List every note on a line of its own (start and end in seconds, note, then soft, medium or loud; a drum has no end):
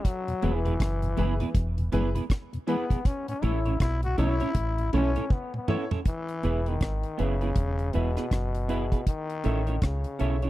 0.05 0.57 F#3 loud
0.05 kick loud
0.05 closed hi-hat loud
0.28 0.34 E2 medium
0.28 0.34 B2 medium
0.28 closed hi-hat medium
0.42 0.79 E1 medium
0.42 0.51 E3 medium
0.42 0.51 G#3 medium
0.42 0.58 B3 medium
0.42 0.52 B3 medium
0.42 0.60 E4 medium
0.42 0.58 E4 medium
0.42 0.60 G#4 medium
0.42 0.59 G#4 medium
0.42 0.60 B4 medium
0.42 0.59 B4 loud
0.42 closed hi-hat medium
0.55 1.68 E3 loud
0.65 0.71 E2 medium
0.65 0.71 B2 medium
0.65 0.74 B3 medium
0.65 0.74 E4 medium
0.65 0.73 G#4 medium
0.65 0.73 B4 medium
0.65 closed hi-hat medium
0.80 1.16 F#1 medium
0.80 kick loud
0.80 cross-stick loud
0.80 closed hi-hat loud
1.02 1.08 E2 medium
1.02 1.08 B2 medium
1.02 closed hi-hat medium
1.17 1.40 F#1 loud
1.17 1.26 E3 medium
1.17 1.26 G#3 medium
1.17 1.33 B3 medium
1.17 1.26 B3 medium
1.17 1.35 E4 medium
1.17 1.33 E4 medium
1.17 1.35 G#4 medium
1.17 1.34 G#4 medium
1.17 1.34 B4 loud
1.17 1.35 B4 loud
1.17 closed hi-hat medium
1.40 1.46 E2 medium
1.40 1.46 B2 medium
1.40 1.49 B3 medium
1.40 1.49 E4 medium
1.40 1.48 G#4 medium
1.40 1.48 B4 medium
1.40 closed hi-hat medium
1.55 1.91 E1 medium
1.55 kick loud
1.55 closed hi-hat loud
1.78 1.84 E2 medium
1.78 1.84 B2 medium
1.78 closed hi-hat medium
1.92 2.15 F#1 medium
1.92 2.02 E3 medium
1.92 2.02 G#3 medium
1.92 2.08 B3 loud
1.92 2.02 B3 medium
1.92 2.10 E4 medium
1.92 2.08 E4 medium
1.92 2.09 G#4 medium
1.92 2.10 G#4 medium
1.92 2.09 B4 loud
1.92 2.10 B4 loud
1.92 closed hi-hat medium
2.15 2.21 E2 medium
2.15 2.21 B2 medium
2.15 2.24 B3 medium
2.15 2.24 E4 medium
2.15 2.23 G#4 medium
2.15 2.23 B4 medium
2.15 closed hi-hat medium
2.30 kick loud
2.30 cross-stick loud
2.30 closed hi-hat medium
2.53 2.59 E2 medium
2.53 2.59 B2 medium
2.53 closed hi-hat medium
2.67 2.76 E3 medium
2.67 2.77 G#3 medium
2.67 2.83 B3 medium
2.67 2.77 B3 medium
2.67 3.08 B3 medium
2.67 2.85 E4 medium
2.67 2.83 E4 medium
2.67 2.85 G#4 medium
2.67 2.84 G#4 medium
2.67 2.86 B4 loud
2.67 2.84 B4 loud
2.67 closed hi-hat medium
2.90 2.96 E2 medium
2.90 2.96 B2 medium
2.90 2.99 B3 medium
2.90 2.99 E4 medium
2.90 2.99 G#4 medium
2.90 2.98 B4 medium
2.90 kick medium
2.90 closed hi-hat medium
3.05 3.28 C#4 loud
3.05 kick loud
3.05 closed hi-hat medium
3.28 3.34 A2 medium
3.28 3.45 C#4 medium
3.28 closed hi-hat medium
3.42 3.79 A1 medium
3.42 3.52 E3 medium
3.42 3.52 A3 medium
3.42 3.58 C#4 medium
3.42 3.52 C#4 medium
3.42 3.60 E4 medium
3.42 3.59 E4 medium
3.42 3.81 E4 loud
3.42 3.60 A4 medium
3.42 3.59 A4 loud
3.42 3.60 C#5 medium
3.42 3.59 C#5 loud
3.42 closed hi-hat medium
3.65 3.72 A2 medium
3.65 3.74 C#4 soft
3.65 3.74 E4 medium
3.65 3.74 A4 medium
3.65 3.73 C#5 medium
3.65 closed hi-hat soft
3.80 4.16 B1 medium
3.80 4.02 E4 loud
3.80 kick loud
3.80 cross-stick loud
3.80 closed hi-hat medium
4.03 4.09 A2 medium
4.03 4.17 F#4 loud
4.03 closed hi-hat medium
4.17 4.40 B1 medium
4.17 4.27 E3 medium
4.17 4.27 A3 medium
4.17 4.33 C#4 medium
4.17 4.27 C#4 medium
4.17 4.35 E4 medium
4.17 4.34 E4 medium
4.17 4.89 E4 loud
4.17 4.35 A4 medium
4.17 4.34 A4 loud
4.17 4.36 C#5 loud
4.17 4.34 C#5 loud
4.17 closed hi-hat medium
4.40 4.47 A2 medium
4.40 4.49 C#4 medium
4.40 4.49 E4 medium
4.40 4.49 A4 medium
4.40 4.48 C#5 medium
4.40 closed hi-hat medium
4.55 4.91 A1 medium
4.55 kick loud
4.55 closed hi-hat loud
4.78 4.84 A2 medium
4.78 closed hi-hat medium
4.93 5.15 B1 medium
4.93 5.02 E3 medium
4.93 5.02 A3 medium
4.93 5.09 C#4 medium
4.93 5.02 C#4 medium
4.93 5.34 C#4 loud
4.93 5.10 E4 loud
4.93 5.09 E4 loud
4.93 5.11 A4 medium
4.93 5.09 A4 loud
4.93 5.11 C#5 loud
4.93 5.10 C#5 loud
4.93 closed hi-hat medium
5.16 5.22 A2 medium
5.16 5.25 C#4 medium
5.16 5.24 E4 medium
5.16 5.24 A4 medium
5.16 5.24 C#5 medium
5.16 closed hi-hat medium
5.30 5.54 B3 medium
5.30 kick loud
5.30 high tom medium
5.54 5.59 A2 medium
5.54 5.90 B3 medium
5.54 mid tom medium
5.68 5.77 E3 medium
5.68 5.77 A3 medium
5.68 5.84 C#4 medium
5.68 5.77 C#4 medium
5.68 5.84 E4 medium
5.68 5.86 E4 medium
5.68 5.84 A4 loud
5.68 5.86 A4 medium
5.68 5.85 C#5 loud
5.68 5.86 C#5 loud
5.68 mid tom loud
5.91 5.97 A2 medium
5.91 6.00 C#4 medium
5.91 5.99 E4 medium
5.91 5.99 A4 medium
5.91 5.99 C#5 medium
5.91 floor tom medium
6.05 6.70 E3 loud
6.05 kick loud
6.05 closed hi-hat medium
6.28 closed hi-hat medium
6.43 6.79 E1 medium
6.43 6.59 B3 medium
6.43 6.59 E4 medium
6.43 6.61 G#4 medium
6.43 6.60 G#4 medium
6.43 6.61 B4 medium
6.43 6.60 B4 medium
6.43 6.61 E5 medium
6.43 closed hi-hat medium
6.66 7.22 D#3 medium
6.66 6.75 B3 soft
6.66 6.75 E4 soft
6.66 6.75 G#4 soft
6.66 6.74 B4 medium
6.66 closed hi-hat soft
6.81 7.03 G#1 medium
6.81 kick medium
6.81 cross-stick loud
6.81 closed hi-hat medium
7.03 closed hi-hat soft
7.18 7.55 F#1 medium
7.18 7.96 C#3 loud
7.18 7.34 B3 medium
7.18 7.34 E4 medium
7.18 7.34 G#4 medium
7.18 7.36 G#4 medium
7.18 7.35 B4 medium
7.18 7.36 B4 medium
7.18 7.37 E5 medium
7.18 closed hi-hat medium
7.41 7.50 B3 medium
7.41 7.50 E4 medium
7.41 7.49 G#4 medium
7.41 7.49 B4 medium
7.41 closed hi-hat soft
7.56 7.92 E1 medium
7.56 kick loud
7.56 closed hi-hat medium
7.79 closed hi-hat soft
7.93 8.16 E1 medium
7.93 9.07 B2 medium
7.93 8.09 B3 medium
7.93 8.10 E4 medium
7.93 8.11 G#4 medium
7.93 8.10 G#4 medium
7.93 8.12 B4 medium
7.93 8.10 B4 medium
7.93 8.12 E5 loud
7.93 closed hi-hat medium
8.16 8.25 B3 soft
8.16 8.25 E4 medium
8.16 8.25 G#4 medium
8.16 8.24 B4 medium
8.16 cross-stick medium
8.16 closed hi-hat soft
8.31 8.89 F#1 medium
8.31 kick medium
8.31 cross-stick medium
8.31 closed hi-hat medium
8.55 closed hi-hat medium
8.68 8.84 B3 medium
8.68 8.85 E4 medium
8.68 8.87 G#4 medium
8.68 8.85 G#4 medium
8.68 8.87 B4 medium
8.68 8.85 B4 loud
8.68 8.87 E5 medium
8.68 closed hi-hat medium
8.92 9.01 B3 medium
8.92 9.00 E4 soft
8.92 9.00 G#4 medium
8.92 9.00 B4 medium
8.92 kick medium
8.92 closed hi-hat soft
9.07 9.84 D#3 loud
9.07 kick medium
9.07 closed hi-hat medium
9.30 closed hi-hat medium
9.44 9.80 A1 medium
9.44 9.60 C#4 medium
9.44 9.60 E4 medium
9.44 9.62 A4 medium
9.44 9.60 A4 medium
9.44 9.62 C#5 medium
9.44 9.61 C#5 medium
9.44 9.62 E5 medium
9.44 closed hi-hat medium
9.67 9.76 C#4 soft
9.67 9.76 E4 soft
9.67 9.75 A4 medium
9.67 9.75 C#5 medium
9.67 closed hi-hat soft
9.82 10.04 C#2 loud
9.82 10.50 C#3 medium
9.82 kick loud
9.82 cross-stick loud
9.82 closed hi-hat medium
10.04 closed hi-hat medium
10.19 10.50 B1 medium
10.19 10.35 C#4 medium
10.19 10.35 E4 medium
10.19 10.37 A4 medium
10.19 10.36 A4 medium
10.19 10.37 C#5 medium
10.19 10.36 C#5 medium
10.19 10.38 E5 loud
10.19 closed hi-hat medium
10.42 10.50 C#4 soft
10.42 10.50 E4 medium
10.42 10.50 A4 medium
10.42 10.50 C#5 medium
10.42 closed hi-hat soft